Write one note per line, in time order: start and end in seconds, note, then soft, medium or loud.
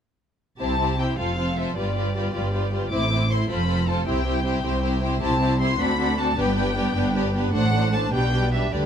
0.60 1.12 C2 soft
0.60 1.12 C3 soft
0.60 0.79 C4 soft
0.60 0.79 E4 soft
0.60 0.79 G4 soft
0.60 0.79 C5 soft
0.60 0.97 A5 medium
0.80 0.99 C4 soft
0.80 0.99 E4 soft
0.80 0.99 G4 soft
0.80 1.00 C5 soft
1.00 1.19 C4 soft
1.00 1.19 E4 soft
1.00 1.19 G4 soft
1.00 1.18 C5 soft
1.00 1.19 G5 soft
1.18 1.70 F1 soft
1.18 1.70 F2 soft
1.18 1.38 C4 soft
1.18 1.38 F4 soft
1.18 1.38 A4 soft
1.18 1.38 C5 soft
1.18 1.57 F5 soft
1.39 1.57 C4 soft
1.39 1.57 F4 soft
1.39 1.57 A4 soft
1.39 1.58 C5 soft
1.57 1.77 C4 soft
1.57 1.76 F4 soft
1.57 1.77 A4 soft
1.57 1.77 C5 soft
1.57 1.77 E5 soft
1.77 2.28 G1 soft
1.77 2.29 G2 soft
1.77 1.95 G3 soft
1.77 1.95 F4 soft
1.77 1.95 G4 soft
1.77 1.96 B4 soft
1.77 2.71 D5 soft
1.96 2.15 G3 soft
1.96 2.15 F4 soft
1.96 2.15 G4 soft
1.96 2.15 B4 soft
2.16 2.34 G3 soft
2.16 2.34 F4 soft
2.16 2.34 G4 soft
2.16 2.35 B4 soft
2.35 2.86 G1 soft
2.35 2.86 G2 soft
2.35 2.53 G3 soft
2.35 2.53 F4 soft
2.35 2.53 G4 soft
2.35 2.53 B4 soft
2.54 2.72 G3 soft
2.54 2.72 F4 soft
2.54 2.72 G4 soft
2.54 2.72 B4 soft
2.73 2.92 G3 soft
2.73 2.92 F4 soft
2.73 2.92 G4 soft
2.73 2.92 B4 soft
2.92 3.43 A1 soft
2.92 3.44 A2 soft
2.92 3.10 C4 soft
2.92 3.11 E4 soft
2.92 3.11 C5 soft
2.92 3.29 D6 medium
3.12 3.29 C4 soft
3.12 3.29 E4 soft
3.12 3.30 E4 soft
3.12 3.30 C5 soft
3.30 3.49 C4 soft
3.30 3.50 E4 soft
3.30 3.49 C5 soft
3.30 3.51 C6 soft
3.50 4.01 F1 soft
3.50 4.01 F2 soft
3.50 3.68 C4 soft
3.50 3.68 F4 soft
3.50 3.67 A4 soft
3.50 3.67 C5 soft
3.50 3.89 B5 medium
3.68 3.87 C4 soft
3.68 3.87 F4 soft
3.68 3.87 A4 soft
3.68 3.87 C5 soft
3.88 4.06 C4 soft
3.88 4.07 F4 soft
3.88 4.07 A4 soft
3.88 4.06 C5 soft
3.88 4.08 A5 soft
4.07 4.58 C2 soft
4.07 4.26 C4 soft
4.07 4.26 E4 soft
4.07 4.25 G4 soft
4.07 4.25 C5 soft
4.07 5.02 G5 medium
4.26 4.45 C4 soft
4.26 4.45 E4 soft
4.26 4.45 G4 soft
4.26 4.45 C5 soft
4.46 4.64 C4 soft
4.46 4.63 E4 soft
4.46 4.63 G4 soft
4.46 4.63 C5 soft
4.64 5.15 C2 soft
4.64 5.16 C2 soft
4.64 4.82 C4 soft
4.64 4.82 E4 soft
4.64 4.82 G4 soft
4.64 4.82 C5 soft
4.83 5.01 C4 soft
4.83 5.02 E4 soft
4.83 5.02 G4 soft
4.83 5.02 C5 soft
5.03 5.20 C4 soft
5.03 5.20 E4 soft
5.03 5.21 G4 soft
5.03 5.21 C5 soft
5.21 5.73 C2 medium
5.21 5.39 C4 soft
5.21 5.39 E4 soft
5.21 5.40 G4 soft
5.21 5.40 C5 soft
5.21 5.57 A5 medium
5.40 5.59 C4 soft
5.40 5.59 E4 soft
5.40 5.60 G4 soft
5.40 5.60 C5 soft
5.60 5.78 C4 soft
5.60 5.79 E4 soft
5.60 5.80 G4 soft
5.60 5.80 C5 soft
5.60 5.80 C6 medium
5.79 6.31 D2 medium
5.79 5.97 C4 soft
5.79 5.97 D4 soft
5.79 5.98 F#4 soft
5.79 5.98 A4 soft
5.79 6.18 B5 medium
5.98 6.17 C4 soft
5.98 6.17 D4 soft
5.98 6.16 F#4 soft
5.98 6.16 A4 soft
6.17 6.37 C4 soft
6.17 6.37 D4 soft
6.17 6.37 F#4 soft
6.17 6.37 A4 soft
6.17 6.38 A5 medium
6.38 6.89 G1 medium
6.38 6.89 G2 medium
6.38 6.56 B3 soft
6.38 6.56 D4 soft
6.38 6.55 G4 medium
6.38 6.55 B4 medium
6.38 7.35 G5 medium
6.57 6.76 B3 soft
6.57 6.76 D4 soft
6.57 6.76 G4 soft
6.57 6.76 B4 soft
6.77 6.95 B3 soft
6.77 6.95 D4 soft
6.77 6.95 G4 soft
6.77 6.95 B4 soft
6.96 7.47 G1 medium
6.96 7.47 G2 medium
6.96 7.15 B3 soft
6.96 7.14 D4 soft
6.96 7.14 G4 soft
6.96 7.14 B4 soft
7.15 7.34 B3 soft
7.15 7.34 D4 soft
7.15 7.34 G4 soft
7.15 7.34 B4 soft
7.35 7.54 B3 soft
7.35 7.53 D4 soft
7.35 7.54 G4 soft
7.35 7.54 B4 soft
7.54 8.06 A1 medium
7.54 8.06 A2 medium
7.54 7.73 A3 medium
7.54 7.73 D4 soft
7.54 7.73 C5 soft
7.54 7.91 F#5 medium
7.74 7.93 A3 soft
7.74 7.93 D4 soft
7.74 7.93 C5 soft
7.94 8.13 A3 soft
7.94 8.12 D4 soft
7.94 8.13 D4 soft
7.94 8.13 C5 soft
7.94 8.13 A5 medium
8.13 8.66 B1 soft
8.13 8.66 B2 medium
8.13 8.32 G3 soft
8.13 8.31 D4 soft
8.13 8.33 G4 soft
8.13 8.33 B4 soft
8.13 8.52 G5 medium
8.33 8.52 G3 soft
8.33 8.52 D4 soft
8.33 8.52 G4 soft
8.33 8.53 B4 soft
8.53 8.72 G3 soft
8.53 8.73 D4 soft
8.53 8.72 G4 soft
8.53 8.72 B4 soft
8.53 8.73 E5 soft
8.73 8.86 D2 soft
8.73 8.86 D3 soft
8.73 8.86 G3 soft
8.73 8.86 D4 soft
8.73 8.86 G4 soft
8.73 8.86 B4 soft
8.73 8.86 D5 soft